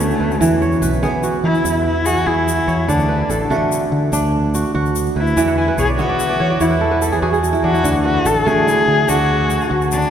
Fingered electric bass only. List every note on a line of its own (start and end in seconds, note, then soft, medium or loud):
0.00 0.12 D2 medium
0.20 0.37 D2 medium
0.41 0.74 E2 medium
0.82 1.04 B1 medium
1.03 1.36 E3 loud
1.44 1.61 E3 medium
1.64 2.15 E2 medium
2.27 2.60 E2 medium
2.68 2.85 E2 medium
2.88 3.22 D2 medium
3.29 3.52 A1 medium
3.50 3.84 D3 loud
3.92 4.09 D3 medium
4.12 4.62 D2 medium
4.75 5.08 D2 medium
5.16 5.33 D2 medium
5.37 5.70 E2 medium
5.78 6.00 B1 medium
5.99 6.32 E3 medium
6.40 6.57 E3 medium
6.60 7.10 E2 medium
7.22 7.56 E2 medium
7.64 7.80 E2 medium
7.84 8.18 D2 loud
8.25 8.48 A1 medium
8.46 8.80 D3 loud
8.88 9.04 D3 medium
9.09 9.59 D2 medium
9.71 10.04 D2 medium